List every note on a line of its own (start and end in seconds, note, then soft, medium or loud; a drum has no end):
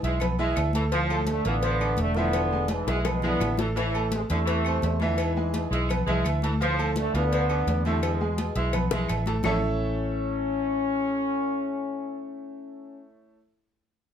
0.00 0.53 B1 loud
0.00 0.18 G#2 medium
0.00 0.18 E3 medium
0.00 0.18 E4 medium
0.00 0.18 E5 medium
0.00 high conga soft
0.04 0.23 G#3 medium
0.04 0.18 E6 medium
0.04 cowbell medium
0.20 0.36 B3 medium
0.20 0.36 B4 medium
0.20 0.36 B5 medium
0.20 cowbell loud
0.20 high conga soft
0.20 low conga medium
0.20 low agogo loud
0.20 claves medium
0.38 0.68 E3 medium
0.38 0.58 G#3 medium
0.38 0.68 E4 loud
0.38 0.68 E5 loud
0.38 high conga soft
0.38 low agogo medium
0.56 1.40 D2 medium
0.56 cowbell medium
0.56 high conga soft
0.56 low timbale medium
0.56 low agogo loud
0.56 claves medium
0.73 0.84 E3 medium
0.73 0.89 A3 medium
0.73 0.89 A4 medium
0.73 0.89 A5 medium
0.73 cowbell medium
0.73 high conga medium
0.92 1.26 A2 medium
0.92 1.21 F3 loud
0.92 1.07 F3 loud
0.92 1.26 F3 loud
0.92 1.08 F4 loud
0.92 1.08 F5 loud
0.92 cowbell loud
0.92 high conga soft
0.92 low agogo loud
1.09 1.39 A3 loud
1.09 1.40 A4 medium
1.09 1.40 A5 medium
1.09 high conga soft
1.09 low agogo loud
1.09 claves medium
1.27 1.45 D3 medium
1.27 1.46 A3 loud
1.27 cowbell medium
1.27 high conga loud
1.45 1.95 A1 loud
1.45 1.98 D3 medium
1.45 1.56 E3 medium
1.45 1.99 B3 loud
1.45 1.75 F4 medium
1.45 1.75 F5 medium
1.45 1.75 F6 medium
1.45 cowbell medium
1.45 high conga soft
1.45 low agogo medium
1.61 1.93 F3 medium
1.61 cowbell loud
1.61 high conga soft
1.61 low agogo medium
1.80 2.10 D4 medium
1.80 2.10 D5 medium
1.80 2.11 D6 medium
1.80 high conga soft
1.80 low agogo loud
1.80 claves medium
1.97 2.81 E1 loud
1.97 2.17 D3 medium
1.97 2.17 A3 loud
1.97 cowbell medium
1.97 high conga medium
2.14 2.71 D3 loud
2.14 2.58 F3 medium
2.14 2.46 F3 loud
2.14 2.71 B3 loud
2.14 2.46 E4 loud
2.14 2.46 E5 loud
2.14 high conga medium
2.14 low agogo medium
2.33 cowbell loud
2.33 high conga soft
2.33 low agogo loud
2.33 claves medium
2.51 2.82 G#3 medium
2.51 2.82 G#4 medium
2.51 2.82 G#5 loud
2.51 high conga soft
2.68 2.88 G#2 medium
2.68 2.88 E3 medium
2.68 cowbell medium
2.68 high conga loud
2.68 low agogo loud
2.87 3.37 B1 loud
2.87 3.01 B2 medium
2.87 3.06 G#3 medium
2.87 3.01 G#3 loud
2.87 3.02 E4 medium
2.87 3.03 E5 medium
2.87 3.03 E6 medium
2.87 cowbell medium
2.87 high bongo loud
2.87 high conga soft
3.01 3.06 A3 medium
3.01 cowbell loud
3.01 high bongo loud
3.01 high conga soft
3.01 low conga medium
3.05 3.24 B2 medium
3.05 3.24 G#3 loud
3.05 3.21 B3 medium
3.05 3.21 B4 medium
3.05 3.21 B5 medium
3.05 low agogo loud
3.05 claves medium
3.22 3.57 D3 medium
3.22 3.53 E3 loud
3.22 3.42 G#3 medium
3.22 3.57 B3 loud
3.22 3.53 E4 loud
3.22 3.53 E5 loud
3.22 high conga soft
3.22 low conga medium
3.22 low agogo medium
3.40 4.24 A1 medium
3.40 cowbell medium
3.40 low bongo medium
3.40 high conga soft
3.40 low timbale medium
3.40 low agogo loud
3.40 claves medium
3.57 3.68 E3 medium
3.57 3.74 A3 medium
3.57 3.74 A4 medium
3.57 3.74 A5 medium
3.57 cowbell medium
3.57 low bongo medium
3.57 high conga medium
3.76 4.10 A2 medium
3.76 3.91 E3 loud
3.76 4.06 E3 loud
3.76 4.11 E3 medium
3.76 3.91 E4 loud
3.76 3.92 E5 loud
3.76 cowbell loud
3.76 high conga soft
3.76 low agogo loud
3.94 4.24 A3 loud
3.94 4.24 A4 medium
3.94 4.24 A5 medium
3.94 high conga soft
3.94 low agogo loud
3.94 claves medium
4.12 4.22 C3 medium
4.12 4.22 G#3 medium
4.12 cowbell medium
4.12 high conga loud
4.29 4.80 E2 loud
4.29 4.98 C3 medium
4.29 4.39 D3 medium
4.29 4.98 A3 loud
4.29 4.60 E4 medium
4.29 4.60 E5 medium
4.29 4.60 E6 medium
4.29 cowbell medium
4.29 high conga soft
4.29 low agogo medium
4.46 4.76 E3 medium
4.46 cowbell loud
4.46 high conga soft
4.46 low agogo medium
4.64 4.95 C4 medium
4.64 4.95 C5 medium
4.64 4.96 C6 medium
4.64 high conga soft
4.64 low agogo loud
4.64 claves medium
4.82 5.66 E2 loud
4.82 cowbell medium
4.82 high conga medium
4.82 low timbale medium
5.00 5.19 F2 medium
5.00 5.19 D3 medium
5.00 5.42 E3 medium
5.00 5.31 E3 loud
5.00 5.31 E4 loud
5.00 5.31 E5 loud
5.00 high conga medium
5.00 low agogo medium
5.18 5.86 G#2 medium
5.18 5.86 E3 medium
5.18 cowbell loud
5.18 high conga soft
5.18 low agogo loud
5.18 claves medium
5.36 5.66 G#3 medium
5.36 5.66 G#4 medium
5.36 5.66 G#5 medium
5.36 high conga soft
5.54 cowbell medium
5.54 high conga loud
5.54 low agogo medium
5.71 6.04 B1 loud
5.71 5.90 G#3 medium
5.71 5.87 E4 medium
5.71 5.87 E5 medium
5.71 5.87 E6 medium
5.71 cowbell medium
5.71 high conga soft
5.89 6.05 B3 medium
5.89 6.05 B4 medium
5.89 6.05 B5 medium
5.89 cowbell loud
5.89 high conga soft
5.89 low conga medium
5.89 low agogo loud
5.89 claves medium
6.07 6.24 C2 medium
6.07 6.37 E3 loud
6.07 6.25 G#3 loud
6.07 6.37 E4 loud
6.07 6.37 E5 loud
6.07 high conga soft
6.07 low conga medium
6.07 low agogo medium
6.25 7.08 D2 loud
6.25 cowbell medium
6.25 high conga soft
6.25 low agogo loud
6.25 claves medium
6.42 6.52 E3 medium
6.42 6.58 A3 medium
6.42 6.58 A4 medium
6.42 6.58 A5 medium
6.42 cowbell medium
6.42 high conga medium
6.60 6.94 A2 medium
6.60 6.75 F3 loud
6.60 6.94 F3 loud
6.60 6.90 F3 loud
6.60 6.75 F4 loud
6.60 6.75 F5 medium
6.60 cowbell loud
6.60 high conga soft
6.60 low agogo medium
6.78 7.08 A3 medium
6.78 7.08 A4 medium
6.78 7.08 A5 loud
6.78 high conga soft
6.78 low agogo loud
6.78 claves medium
6.96 7.14 D3 medium
6.96 7.14 A3 loud
6.96 cowbell medium
6.96 high conga loud
7.13 7.63 D2 loud
7.13 7.82 D3 loud
7.13 7.23 E3 medium
7.13 7.81 B3 loud
7.13 7.43 F4 medium
7.13 7.44 F5 medium
7.13 7.44 F6 medium
7.13 cowbell medium
7.13 high conga soft
7.13 low agogo medium
7.31 7.61 F3 medium
7.31 cowbell loud
7.31 high conga soft
7.31 low agogo medium
7.49 7.79 D4 medium
7.49 7.79 D5 medium
7.49 7.79 D6 medium
7.49 high conga soft
7.49 low agogo loud
7.49 claves medium
7.67 8.50 E2 loud
7.67 cowbell medium
7.67 high conga medium
7.67 low timbale medium
7.84 8.02 C3 medium
7.84 8.15 D3 loud
7.84 8.26 F3 medium
7.84 8.02 A3 loud
7.84 8.15 E4 loud
7.84 8.15 E5 medium
7.84 high conga medium
7.84 low agogo medium
8.03 8.70 B2 medium
8.03 8.70 G#3 medium
8.03 cowbell loud
8.03 high conga soft
8.03 low agogo loud
8.03 claves medium
8.20 8.50 G#3 medium
8.20 8.50 G#4 medium
8.20 8.50 G#5 medium
8.20 high conga soft
8.38 cowbell medium
8.38 high conga loud
8.38 low agogo loud
8.56 8.89 B1 loud
8.56 8.74 G#3 medium
8.56 8.71 E4 medium
8.56 8.71 E5 medium
8.56 8.71 E6 medium
8.56 cowbell medium
8.56 high conga soft
8.73 8.88 B3 medium
8.73 8.88 B4 medium
8.73 8.89 B5 medium
8.73 cowbell loud
8.73 high conga soft
8.73 low conga loud
8.73 low agogo medium
8.73 claves medium
8.91 9.08 B1 medium
8.91 9.21 E3 medium
8.91 9.10 G#3 medium
8.91 9.21 E4 loud
8.91 9.21 E5 loud
8.91 high bongo loud
8.91 high conga soft
8.91 low conga medium
8.91 low agogo medium
9.08 9.41 A1 medium
9.08 cowbell medium
9.08 high conga soft
9.08 low timbale medium
9.08 low agogo loud
9.08 claves medium
9.26 9.36 E3 medium
9.26 9.42 A3 medium
9.26 9.42 A4 medium
9.26 9.42 A5 medium
9.26 cowbell medium
9.26 low bongo medium
9.26 high conga medium
9.43 13.35 A1 medium
9.43 9.57 A2 loud
9.43 13.37 A3 loud
9.43 13.05 C#4 loud
9.43 13.37 E4 loud
9.43 13.37 A4 loud
9.43 13.37 C#5 loud
9.43 13.37 E5 loud
9.43 13.37 A5 loud
9.43 low bongo loud
9.43 low conga loud
9.43 low timbale loud
9.43 claves loud